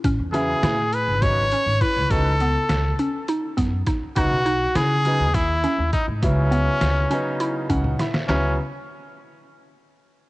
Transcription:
<<
  \new Staff \with { instrumentName = "Trumpet" } { \time 7/8 \key cis \minor \tempo 4 = 102 r8 gis'4 b'8 cis''4 b'8 | a'2 r4. | fis'4 gis'4 e'4 dis'8 | cis'2~ cis'8 r4 |
cis'8 r2. | }
  \new Staff \with { instrumentName = "Synth arpeggio sound" } { \time 7/8 \key cis \minor cis'8 cis'8 e'4 r8 cis'8 e'8~ | e'8 b4 cis'8 dis'8 b8 dis'8 | dis'8 dis'8 e'4 r8 cis'8 dis'8~ | dis'8 b4 cis'8 e'8 cis'8 e'8 |
cis'8 r2. | }
  \new Staff \with { instrumentName = "Grand piano" } { \time 7/8 \key cis \minor r2. r8 | r2. r8 | r2. r8 | r2 r8 fis''8 e''8 |
r2. r8 | }
  \new Staff \with { instrumentName = "Grand piano" } { \clef bass \time 7/8 \key cis \minor r8 <cis fis b e'>8 r4 <cis fis b dis'>8 r4 | <cis fis b dis'>8 r2. | <cis fis b dis'>8 r4 <cis fis b dis'>8 r4. | <cis fis b e'>4. <cis fis b dis'>4. r8 |
<cis fis b e'>8 r2. | }
  \new Staff \with { instrumentName = "Upright bass" } { \clef bass \time 7/8 \key cis \minor a,,16 e,8. a,8. gis,,4 gis,,16 r16 cis,16 | cis,4 cis,8 r4 fis,8 r8 | cis,16 b,,8. cis8. dis,4 dis,16 r16 gis,16 | cis,4 cis,8 r4 cis,8 r8 |
cis,8 r2. | }
  \new DrumStaff \with { instrumentName = "Drums" } \drummode { \time 7/8 <hh bd>8 <hh sn>8 <hh sn>8 hh8 <hh bd sn>8 hh8 <hh bd>8 | <hh bd>8 <hh sn>8 <hh sn>8 hh8 hh8 <hh bd sn>8 <hh bd sn>8 | <hh bd>8 hh8 <hh sn>8 hh8 <hh bd sn>8 <hh sn>8 <hh bd>8 | <hh bd>8 hh8 <hh sn>8 hh8 hh8 <hh bd>16 tommh16 <hh sn>16 sn16 |
<hc sn>4 r4 r4. | }
>>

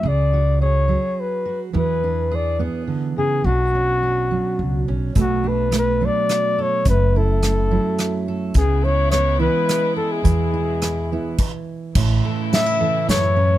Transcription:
<<
  \new Staff \with { instrumentName = "Flugelhorn" } { \time 3/4 \key b \dorian \tempo 4 = 106 d''4 cis''4 b'8. r16 | b'4 d''8 r4 gis'8 | fis'2~ fis'8 r8 | fis'8 b'8 b'8 d''4 cis''8 |
b'8 a'2 r8 | gis'8 cis''8 cis''8 b'4 a'16 gis'16~ | gis'2 r4 | r4 e''4 cis''4 | }
  \new Staff \with { instrumentName = "Steel-string acoustic guitar" } { \time 3/4 \key b \dorian << { gis'8 fis'8 gis'8 gis'4 fis'8 | gis'8 d'8 gis'8 gis'4. | d'8 cis'8 d'8 d'4 cis'8 | a8 d'8 a8 d'4 a'8 |
a8 e'8 a8 e'4 a'8 | b8 e'8 b8 e'4 gis'8 | e'8 e'8 e'8 e'8 r4 | r8 a'8 cis'16 e'16 a'8 e'8 cis'8 | } \\ { cis4. fis4. | e4. b8 d8 cis8 | b,4. fis4. | b,4. fis4. |
fis,4. fis4. | cis4. e4. | e4. b8 r4 | a,4. e4. | } >> }
  \new Staff \with { instrumentName = "String section" } { \clef bass \time 3/4 \key b \dorian << { r2. | r2. | r2. | r2. |
r2. | e'2.~ | e'2 r4 | e'2. | } \\ { r2. | r2. | r2. | r2. |
r2. | <cis gis b>2. | <b, e>2 r4 | <cis e a>2. | } >> }
  \new Staff \with { instrumentName = "Upright bass" } { \clef bass \time 3/4 \key b \dorian cis,2 r4 | e,2 r4 | b,,2 cis,8 b,,8 | b,,2 r4 |
fis,,2 r4 | cis,2 r4 | e,2 r4 | a,,8 r4. fis,4 | }
  \new DrumStaff \with { instrumentName = "Drums" } \drummode { \time 3/4 r4 r4 r4 | r4 r4 r4 | r4 r4 r4 | <hh bd>4 <hh ss>4 <hh ss>4 |
<hh bd>4 <hh ss>4 <hh ss>4 | <hh bd>4 <hh ss>4 <hh ss>4 | <hh bd>4 <hh ss>4 <cymc bd>4 | <cymc bd>4 <hh sn>4 <hh sn>4 | }
>>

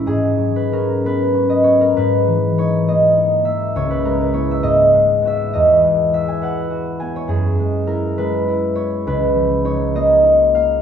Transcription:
<<
  \new Staff \with { instrumentName = "Harp" } { \time 6/8 \key gis \minor \tempo 4. = 67 << { cis''2. | r2. | r2. | r2. |
r2. | r2. | } \\ { gis'8. b'16 ais'8 b'8. dis''16 cis''16 ais'16 | b'4 cis''8 dis''4 e''8 | cis''16 b'16 ais'16 b'16 cis''16 e''16 dis''4 e''8 | dis''4 e''16 gis''16 fis''4 gis''16 cis''16 |
gis'4 ais'8 b'4 cis''8 | b'4 cis''8 dis''4 eis''8 | } >> }
  \new Staff \with { instrumentName = "Harp" } { \time 6/8 \key gis \minor <gis, gis cis'>8 fis8 cis'8 b8 cis'8 b8 | gis,8 e8 dis'8 ais8 dis'8 ais8 | cis,8 gis8 <ais e'>8 gis,8 gis8 <b fis'>8 | e,8 gis8 fis'8 b'8 fis'8 b8 |
fis,8 gis8 e'8 gis8 e'8 b8 | cis,8 eis8 dis'8 ais8 dis'8 ais8 | }
>>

